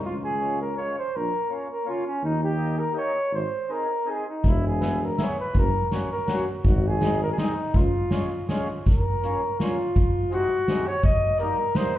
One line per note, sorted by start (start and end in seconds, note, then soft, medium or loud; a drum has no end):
0.05 0.78 C#2 medium
0.05 0.14 F4 medium
0.24 0.59 G#4 medium
0.40 0.59 G#3 soft
0.40 0.59 C#4 soft
0.40 0.60 F4 medium
0.61 0.76 A#4 medium
0.77 0.96 G#3 soft
0.77 0.96 C#4 soft
0.77 0.96 F4 medium
0.77 0.96 C#5 medium
0.99 1.18 C5 medium
1.16 1.29 A#1 medium
1.16 1.52 A#4 medium
1.49 1.67 A#3 soft
1.49 1.68 C#4 soft
1.49 1.68 F4 soft
1.71 1.86 A#4 medium
1.85 2.03 A#3 medium
1.85 2.04 C#4 soft
1.85 2.04 F4 medium
1.89 2.05 F4 medium
2.06 2.22 C#4 medium
2.22 2.94 D#2 medium
2.22 2.42 D#4 medium
2.44 2.80 G4 medium
2.55 2.75 A#3 soft
2.55 2.76 D#4 soft
2.55 2.76 G4 medium
2.79 2.96 A#4 medium
2.92 3.12 A#3 medium
2.92 3.12 D#4 medium
2.92 3.13 G4 medium
2.97 3.31 C#5 medium
3.31 3.44 G#1 medium
3.31 3.73 C5 medium
3.69 3.87 C4 soft
3.69 3.87 D#4 medium
3.69 3.87 G#4 soft
3.69 4.11 A#4 medium
4.05 4.24 C4 soft
4.05 4.24 D#4 medium
4.05 4.25 G#4 soft
4.10 4.28 G#4 medium
4.29 4.49 D#4 medium
4.44 5.16 E1 medium
4.44 4.66 E4 medium
4.44 kick medium
4.44 closed hi-hat soft
4.67 5.06 G#4 medium
4.80 4.99 B3 soft
4.80 4.99 E4 soft
4.80 5.00 G#4 medium
4.80 snare soft
4.80 closed hi-hat soft
5.05 5.25 A#4 medium
5.17 5.36 B3 medium
5.17 5.36 E4 medium
5.17 5.37 G#4 medium
5.17 snare medium
5.17 closed hi-hat soft
5.24 5.39 C#5 medium
5.40 5.60 B4 medium
5.54 5.68 F#1 medium
5.54 kick medium
5.54 closed hi-hat soft
5.58 5.93 A#4 medium
5.91 6.09 A#3 medium
5.91 6.09 C#4 medium
5.91 6.10 F#4 medium
5.91 snare medium
5.91 closed hi-hat soft
6.13 6.28 A#4 medium
6.26 6.45 A#3 medium
6.26 6.45 C#4 soft
6.26 6.46 F#4 medium
6.26 snare medium
6.26 closed hi-hat soft
6.32 6.48 F#4 medium
6.64 7.36 G#1 medium
6.64 kick medium
6.64 closed hi-hat soft
6.68 6.89 F#4 medium
6.88 7.22 G#4 medium
6.99 7.17 G#3 medium
6.99 7.18 C4 medium
6.99 7.19 D#4 medium
6.99 snare medium
6.99 closed hi-hat soft
7.23 7.30 A#4 medium
7.32 7.39 G#4 medium
7.36 7.55 G#3 medium
7.36 7.55 C4 medium
7.36 7.56 D#4 medium
7.36 7.78 D#4 medium
7.36 snare medium
7.36 closed hi-hat soft
7.74 7.87 C#2 medium
7.74 8.50 F4 medium
7.74 kick medium
7.74 closed hi-hat soft
8.11 8.29 G#3 medium
8.11 8.29 C#4 medium
8.11 8.30 F4 medium
8.11 snare medium
8.11 closed hi-hat soft
8.48 8.67 G#3 medium
8.48 8.68 C#4 medium
8.48 8.68 F4 medium
8.48 snare medium
8.48 closed hi-hat soft
8.86 9.57 A#4 medium
8.86 kick medium
8.86 closed hi-hat soft
9.23 9.41 A#3 medium
9.23 9.41 C#4 soft
9.23 9.42 F4 medium
9.23 closed hi-hat soft
9.60 9.77 A#3 medium
9.60 9.77 C#4 medium
9.60 10.29 F4 medium
9.60 9.78 F4 medium
9.60 snare medium
9.60 closed hi-hat soft
9.96 kick medium
9.96 closed hi-hat soft
10.30 10.49 C3 medium
10.30 10.49 G#3 soft
10.30 10.49 C4 soft
10.30 10.50 D#4 medium
10.30 10.89 F#4 loud
10.30 closed hi-hat soft
10.67 10.85 C3 medium
10.67 10.86 G#3 soft
10.67 10.86 C4 medium
10.67 10.86 D#4 medium
10.67 snare medium
10.67 closed hi-hat soft
10.87 11.04 C#5 medium
11.03 11.41 D#5 medium
11.03 kick medium
11.03 closed hi-hat soft
11.39 11.57 G3 medium
11.39 11.58 A#3 medium
11.39 11.58 D#4 medium
11.39 11.78 A#4 medium
11.39 closed hi-hat soft
11.75 11.94 G3 medium
11.75 11.94 A#3 medium
11.75 11.95 D#4 medium
11.75 11.98 C5 medium
11.75 snare medium
11.75 closed hi-hat soft